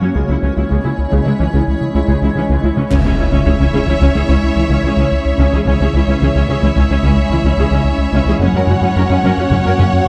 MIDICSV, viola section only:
0, 0, Header, 1, 2, 480
1, 0, Start_track
1, 0, Tempo, 550459
1, 136, Time_signature, 5, 2, 24, 8
1, 8790, End_track
2, 0, Start_track
2, 0, Title_t, "Viola section"
2, 0, Program_c, 0, 48
2, 14, Note_on_c, 0, 61, 39
2, 17, Note_on_c, 0, 54, 38
2, 63, Note_off_c, 0, 61, 0
2, 65, Note_off_c, 0, 54, 0
2, 129, Note_on_c, 0, 56, 40
2, 131, Note_on_c, 0, 49, 43
2, 179, Note_off_c, 0, 56, 0
2, 180, Note_off_c, 0, 49, 0
2, 253, Note_on_c, 0, 56, 30
2, 254, Note_on_c, 0, 64, 28
2, 302, Note_off_c, 0, 56, 0
2, 302, Note_off_c, 0, 64, 0
2, 372, Note_on_c, 0, 61, 27
2, 374, Note_on_c, 0, 52, 29
2, 421, Note_off_c, 0, 61, 0
2, 422, Note_off_c, 0, 52, 0
2, 491, Note_on_c, 0, 64, 30
2, 494, Note_on_c, 0, 56, 27
2, 540, Note_off_c, 0, 64, 0
2, 542, Note_off_c, 0, 56, 0
2, 610, Note_on_c, 0, 49, 41
2, 611, Note_on_c, 0, 56, 38
2, 659, Note_off_c, 0, 49, 0
2, 660, Note_off_c, 0, 56, 0
2, 729, Note_on_c, 0, 64, 31
2, 731, Note_on_c, 0, 56, 32
2, 778, Note_off_c, 0, 64, 0
2, 780, Note_off_c, 0, 56, 0
2, 968, Note_on_c, 0, 49, 46
2, 969, Note_on_c, 0, 56, 44
2, 1018, Note_off_c, 0, 49, 0
2, 1018, Note_off_c, 0, 56, 0
2, 1098, Note_on_c, 0, 64, 36
2, 1099, Note_on_c, 0, 56, 33
2, 1146, Note_off_c, 0, 56, 0
2, 1146, Note_off_c, 0, 64, 0
2, 1217, Note_on_c, 0, 61, 33
2, 1219, Note_on_c, 0, 52, 31
2, 1265, Note_off_c, 0, 61, 0
2, 1266, Note_off_c, 0, 52, 0
2, 1342, Note_on_c, 0, 49, 45
2, 1342, Note_on_c, 0, 56, 46
2, 1389, Note_off_c, 0, 49, 0
2, 1389, Note_off_c, 0, 56, 0
2, 1698, Note_on_c, 0, 64, 32
2, 1699, Note_on_c, 0, 56, 32
2, 1746, Note_off_c, 0, 64, 0
2, 1747, Note_off_c, 0, 56, 0
2, 1815, Note_on_c, 0, 56, 46
2, 1816, Note_on_c, 0, 49, 44
2, 1863, Note_off_c, 0, 56, 0
2, 1864, Note_off_c, 0, 49, 0
2, 1943, Note_on_c, 0, 64, 35
2, 1948, Note_on_c, 0, 56, 34
2, 1990, Note_off_c, 0, 64, 0
2, 1993, Note_off_c, 0, 56, 0
2, 2062, Note_on_c, 0, 61, 31
2, 2065, Note_on_c, 0, 52, 33
2, 2109, Note_off_c, 0, 61, 0
2, 2111, Note_off_c, 0, 52, 0
2, 2184, Note_on_c, 0, 49, 44
2, 2184, Note_on_c, 0, 56, 42
2, 2231, Note_off_c, 0, 49, 0
2, 2231, Note_off_c, 0, 56, 0
2, 2302, Note_on_c, 0, 56, 34
2, 2304, Note_on_c, 0, 64, 33
2, 2349, Note_off_c, 0, 56, 0
2, 2350, Note_off_c, 0, 64, 0
2, 2413, Note_on_c, 0, 52, 36
2, 2415, Note_on_c, 0, 61, 40
2, 2462, Note_off_c, 0, 52, 0
2, 2463, Note_off_c, 0, 61, 0
2, 2531, Note_on_c, 0, 61, 53
2, 2533, Note_off_c, 0, 61, 0
2, 2533, Note_on_c, 0, 61, 53
2, 2582, Note_off_c, 0, 61, 0
2, 2660, Note_on_c, 0, 61, 35
2, 2662, Note_on_c, 0, 68, 33
2, 2707, Note_off_c, 0, 61, 0
2, 2709, Note_off_c, 0, 68, 0
2, 2783, Note_on_c, 0, 64, 34
2, 2784, Note_on_c, 0, 61, 33
2, 2830, Note_off_c, 0, 61, 0
2, 2830, Note_off_c, 0, 64, 0
2, 2893, Note_on_c, 0, 61, 56
2, 2941, Note_off_c, 0, 61, 0
2, 3019, Note_on_c, 0, 61, 36
2, 3019, Note_on_c, 0, 68, 34
2, 3066, Note_off_c, 0, 68, 0
2, 3067, Note_off_c, 0, 61, 0
2, 3138, Note_on_c, 0, 61, 52
2, 3140, Note_off_c, 0, 61, 0
2, 3140, Note_on_c, 0, 61, 50
2, 3187, Note_off_c, 0, 61, 0
2, 3256, Note_on_c, 0, 68, 43
2, 3258, Note_on_c, 0, 61, 41
2, 3304, Note_off_c, 0, 68, 0
2, 3306, Note_off_c, 0, 61, 0
2, 3383, Note_on_c, 0, 61, 37
2, 3385, Note_on_c, 0, 64, 41
2, 3430, Note_off_c, 0, 61, 0
2, 3431, Note_off_c, 0, 64, 0
2, 3506, Note_on_c, 0, 61, 53
2, 3507, Note_off_c, 0, 61, 0
2, 3507, Note_on_c, 0, 61, 53
2, 3553, Note_off_c, 0, 61, 0
2, 3624, Note_on_c, 0, 61, 35
2, 3627, Note_on_c, 0, 68, 35
2, 3671, Note_off_c, 0, 61, 0
2, 3673, Note_off_c, 0, 68, 0
2, 3743, Note_on_c, 0, 61, 45
2, 3746, Note_off_c, 0, 61, 0
2, 3746, Note_on_c, 0, 61, 51
2, 3792, Note_off_c, 0, 61, 0
2, 3983, Note_on_c, 0, 64, 36
2, 3985, Note_on_c, 0, 61, 37
2, 4030, Note_off_c, 0, 64, 0
2, 4032, Note_off_c, 0, 61, 0
2, 4110, Note_on_c, 0, 61, 53
2, 4156, Note_off_c, 0, 61, 0
2, 4235, Note_on_c, 0, 68, 37
2, 4236, Note_on_c, 0, 61, 38
2, 4280, Note_off_c, 0, 61, 0
2, 4280, Note_off_c, 0, 68, 0
2, 4352, Note_on_c, 0, 61, 49
2, 4353, Note_off_c, 0, 61, 0
2, 4353, Note_on_c, 0, 61, 49
2, 4398, Note_off_c, 0, 61, 0
2, 4706, Note_on_c, 0, 61, 50
2, 4707, Note_off_c, 0, 61, 0
2, 4707, Note_on_c, 0, 61, 54
2, 4753, Note_off_c, 0, 61, 0
2, 4832, Note_on_c, 0, 68, 44
2, 4834, Note_on_c, 0, 61, 42
2, 4877, Note_off_c, 0, 68, 0
2, 4878, Note_off_c, 0, 61, 0
2, 4944, Note_on_c, 0, 61, 52
2, 4946, Note_off_c, 0, 61, 0
2, 4946, Note_on_c, 0, 61, 51
2, 4992, Note_off_c, 0, 61, 0
2, 5075, Note_on_c, 0, 61, 36
2, 5076, Note_on_c, 0, 68, 36
2, 5119, Note_off_c, 0, 61, 0
2, 5120, Note_off_c, 0, 68, 0
2, 5190, Note_on_c, 0, 61, 34
2, 5192, Note_on_c, 0, 64, 39
2, 5235, Note_off_c, 0, 61, 0
2, 5237, Note_off_c, 0, 64, 0
2, 5314, Note_on_c, 0, 61, 50
2, 5315, Note_off_c, 0, 61, 0
2, 5315, Note_on_c, 0, 61, 49
2, 5359, Note_off_c, 0, 61, 0
2, 5434, Note_on_c, 0, 68, 34
2, 5436, Note_on_c, 0, 61, 37
2, 5479, Note_off_c, 0, 68, 0
2, 5480, Note_off_c, 0, 61, 0
2, 5549, Note_on_c, 0, 61, 55
2, 5554, Note_off_c, 0, 61, 0
2, 5554, Note_on_c, 0, 61, 52
2, 5598, Note_off_c, 0, 61, 0
2, 5668, Note_on_c, 0, 61, 38
2, 5669, Note_on_c, 0, 68, 39
2, 5714, Note_off_c, 0, 61, 0
2, 5714, Note_off_c, 0, 68, 0
2, 5786, Note_on_c, 0, 61, 44
2, 5786, Note_on_c, 0, 64, 39
2, 5832, Note_off_c, 0, 61, 0
2, 5832, Note_off_c, 0, 64, 0
2, 5902, Note_on_c, 0, 61, 51
2, 5905, Note_off_c, 0, 61, 0
2, 5905, Note_on_c, 0, 61, 53
2, 5951, Note_off_c, 0, 61, 0
2, 6026, Note_on_c, 0, 61, 42
2, 6026, Note_on_c, 0, 68, 39
2, 6072, Note_off_c, 0, 61, 0
2, 6072, Note_off_c, 0, 68, 0
2, 6146, Note_on_c, 0, 61, 46
2, 6148, Note_off_c, 0, 61, 0
2, 6148, Note_on_c, 0, 61, 52
2, 6194, Note_off_c, 0, 61, 0
2, 6380, Note_on_c, 0, 61, 39
2, 6382, Note_on_c, 0, 64, 34
2, 6428, Note_off_c, 0, 61, 0
2, 6429, Note_off_c, 0, 64, 0
2, 6499, Note_on_c, 0, 61, 54
2, 6501, Note_off_c, 0, 61, 0
2, 6501, Note_on_c, 0, 61, 48
2, 6548, Note_off_c, 0, 61, 0
2, 6619, Note_on_c, 0, 68, 43
2, 6621, Note_on_c, 0, 61, 41
2, 6666, Note_off_c, 0, 68, 0
2, 6668, Note_off_c, 0, 61, 0
2, 6741, Note_on_c, 0, 61, 50
2, 6742, Note_off_c, 0, 61, 0
2, 6742, Note_on_c, 0, 61, 58
2, 6789, Note_off_c, 0, 61, 0
2, 7104, Note_on_c, 0, 61, 56
2, 7105, Note_off_c, 0, 61, 0
2, 7105, Note_on_c, 0, 61, 55
2, 7152, Note_off_c, 0, 61, 0
2, 7226, Note_on_c, 0, 68, 48
2, 7230, Note_on_c, 0, 61, 45
2, 7272, Note_off_c, 0, 68, 0
2, 7275, Note_off_c, 0, 61, 0
2, 7344, Note_on_c, 0, 61, 54
2, 7391, Note_off_c, 0, 61, 0
2, 7463, Note_on_c, 0, 61, 38
2, 7464, Note_on_c, 0, 70, 33
2, 7510, Note_off_c, 0, 61, 0
2, 7510, Note_off_c, 0, 70, 0
2, 7582, Note_on_c, 0, 66, 42
2, 7583, Note_on_c, 0, 61, 37
2, 7629, Note_off_c, 0, 61, 0
2, 7629, Note_off_c, 0, 66, 0
2, 7699, Note_on_c, 0, 61, 50
2, 7701, Note_off_c, 0, 61, 0
2, 7701, Note_on_c, 0, 61, 59
2, 7748, Note_off_c, 0, 61, 0
2, 7825, Note_on_c, 0, 70, 38
2, 7826, Note_on_c, 0, 61, 40
2, 7872, Note_off_c, 0, 61, 0
2, 7872, Note_off_c, 0, 70, 0
2, 7941, Note_on_c, 0, 61, 56
2, 7942, Note_off_c, 0, 61, 0
2, 7942, Note_on_c, 0, 61, 56
2, 7989, Note_off_c, 0, 61, 0
2, 8062, Note_on_c, 0, 70, 39
2, 8066, Note_on_c, 0, 61, 46
2, 8109, Note_off_c, 0, 70, 0
2, 8112, Note_off_c, 0, 61, 0
2, 8186, Note_on_c, 0, 61, 37
2, 8188, Note_on_c, 0, 66, 43
2, 8232, Note_off_c, 0, 61, 0
2, 8233, Note_off_c, 0, 66, 0
2, 8302, Note_on_c, 0, 61, 60
2, 8303, Note_off_c, 0, 61, 0
2, 8303, Note_on_c, 0, 61, 53
2, 8350, Note_off_c, 0, 61, 0
2, 8423, Note_on_c, 0, 61, 44
2, 8426, Note_on_c, 0, 70, 42
2, 8470, Note_off_c, 0, 61, 0
2, 8472, Note_off_c, 0, 70, 0
2, 8536, Note_on_c, 0, 61, 64
2, 8538, Note_off_c, 0, 61, 0
2, 8538, Note_on_c, 0, 61, 59
2, 8586, Note_off_c, 0, 61, 0
2, 8790, End_track
0, 0, End_of_file